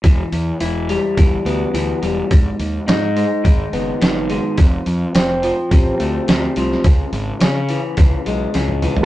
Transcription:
0.04 E1 E3, kick, open hi-hat
0.32 E2, open hi-hat
0.60 E1 E4, open hi-hat
0.89 G3, open hi-hat
1.17 G1 E3, kick, open hi-hat
1.45 D2 B3, open hi-hat
1.74 D2 E3, open hi-hat
2.03 E1 G3, open hi-hat
2.31 G#1 G#2, kick, open hi-hat
2.59 D#2, open hi-hat
2.88 G#2 D#4, snare, open hi-hat
3.16 G#3, open hi-hat
3.44 G#1 D#3, kick, open hi-hat
3.73 F#1 B3, open hi-hat
4.01 F#1 D#3, snare, open hi-hat
4.30 G#3, open hi-hat
4.58 F1 F2, kick, open hi-hat
4.86 F2, open hi-hat
5.15 F1 C4, snare, open hi-hat
5.43 F3, open hi-hat
5.71 A1 C3, kick, open hi-hat
6.00 D2 A3, open hi-hat
6.28 D2 C3, snare, open hi-hat
6.56 C2 F3, open hi-hat
6.71 snare
6.84 C#2 C#3, kick, open hi-hat
7.12 G#1, open hi-hat
7.41 C#3 C#4, snare, open hi-hat
7.69 E3, open hi-hat
7.97 C#2 C#3, kick, open hi-hat
8.26 B1 G#3, open hi-hat
8.54 C#2 C#3, snare, open hi-hat
8.68 high tom
8.82 E3, mid tom, open hi-hat
8.96 floor tom

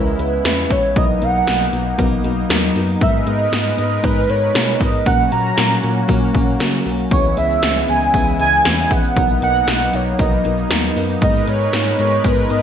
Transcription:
Already playing: C#2 C#3 G#3 B3 C#4 E4 A#4 B4
0.19 C#2 G#3 C#4 E4 B4, closed hi-hat
0.44 E2 G#3 C#4 E4 B4, snare, closed hi-hat
0.70 A#1 G#3 C#4 E4 B4 C#5, kick, open hi-hat
0.96 B1 F#3 A#3 B3 D#4 A#4 D#5, kick, closed hi-hat
1.21 B1 F#3 B3 D#4 A#4 F#5, closed hi-hat
1.47 B1 F#3 B3 D#4 A#4, snare, closed hi-hat
1.72 B1 F#3 B3 D#4 A#4, closed hi-hat
1.98 B1 F#3 B3 D#4 A#4, kick, closed hi-hat
2.24 B1 F#3 B3 D#4 A#4, closed hi-hat
2.49 D#2 F#3 B3 D#4 A#4, snare, closed hi-hat
2.75 F#2 F#3 B3 D#4 A#4, open hi-hat
3.01 G#2 G#3 B3 D#4 A#4 B4 E5, kick, closed hi-hat
3.26 G#2 G#3 B3 D#4 A#4 D#5, closed hi-hat
3.52 G#2 G#3 B3 D#4 A#4, snare, closed hi-hat
3.77 G#2 G#3 B3 D#4 A#4 D#5, closed hi-hat
4.03 G#2 G#3 B3 D#4 A#4 B4, kick, closed hi-hat
4.29 G#2 G#3 B3 D#4 A#4 C#5, closed hi-hat
4.54 B2 G#3 B3 D#4 A#4, snare, closed hi-hat
4.80 G#2 G#3 B3 D#4 A#4 D#5, kick, open hi-hat
5.05 A#2 F#3 A#3 C#4 F#4 A#4 F#5, kick, closed hi-hat
5.31 A#2 F#3 A#3 C#4 A#4 A#5, closed hi-hat
5.57 A#2 F#3 A#3 C#4 A#4, snare, closed hi-hat
5.82 A#2 F#3 A#3 C#4 A#4, closed hi-hat
6.08 A#2 F#3 A#3 C#4 A#4, kick, closed hi-hat
6.34 A#2 F#3 A#3 C#4 A#4, kick, closed hi-hat
6.60 C#3 F#3 A#3 C#4 A#4, snare, closed hi-hat
6.85 B1 F#3 A#3 C#4 A#4, open hi-hat
7.11 C#2 C#3 E3 G#3 B3 C#4 E4 G#4 C#5, kick, closed hi-hat, shaker
7.25 shaker
7.37 C#2 E3 B3 C#4 G#4 E5, closed hi-hat, shaker
7.50 shaker
7.62 C#2 E3 B3 C#4 G#4, snare, closed hi-hat, shaker
7.76 shaker
7.88 C#2 E3 B3 C#4 G#4 G#5, closed hi-hat, shaker
8.01 shaker
8.14 C#2 E3 B3 C#4 G#4 G#5, kick, closed hi-hat, shaker
8.27 shaker
8.39 C#2 E3 B3 C#4 G#4 G#5, closed hi-hat
8.53 shaker
8.64 E2 E3 B3 C#4 G#4, snare, closed hi-hat, shaker
8.78 shaker
8.90 A#1 E3 B3 C#4 G#4 F#5, kick, open hi-hat, shaker
9.04 shaker
9.16 B1 F#3 A#3 B3 D#4 A#4, kick, closed hi-hat, shaker
9.30 shaker
9.42 B1 F#3 B3 D#4 A#4 F#5, closed hi-hat, shaker
9.55 shaker
9.67 B1 F#3 B3 D#4 A#4, snare, closed hi-hat, shaker
9.81 shaker
9.93 B1 F#3 B3 D#4 A#4 C#5, closed hi-hat, shaker
10.06 shaker
10.18 B1 F#3 B3 D#4 A#4 D#5, kick, closed hi-hat, shaker
10.32 shaker
10.44 B1 F#3 B3 D#4 A#4, closed hi-hat
10.58 shaker
10.70 D#2 F#3 B3 D#4 A#4, snare, closed hi-hat, shaker
10.83 shaker
10.96 F#2 F#3 B3 D#4 A#4, open hi-hat, shaker
11.09 shaker
11.21 G#2 G#3 B3 D#4 A#4 B4 D#5, kick, closed hi-hat, shaker
11.35 shaker
11.47 G#2 G#3 B3 D#4 A#4 C#5, closed hi-hat, shaker
11.60 shaker
11.73 G#2 G#3 B3 D#4 A#4, snare, closed hi-hat, shaker
11.86 shaker
11.98 G#2 G#3 B3 D#4 A#4 C#5, closed hi-hat, shaker
12.11 shaker
12.24 G#2 G#3 B3 D#4 A#4 B4, kick, closed hi-hat, shaker
12.37 shaker
12.50 G#2 G#3 B3 D#4 A#4 D#5, closed hi-hat

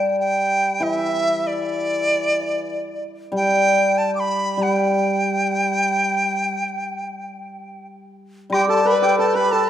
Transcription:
Already playing: G3 G5
0.20 G5
0.80 E3 E5
1.47 D5
3.32 G3
3.36 G5
3.98 A5
4.15 D6
4.20 B5
4.57 G3
4.62 G5
8.50 G3 G4 G5, high woodblock
8.54 G4
8.68 A4 A5
8.84 B4 B5
9.02 G4 G5
9.18 A4 A5
9.35 B4 B5
9.52 A4 A5

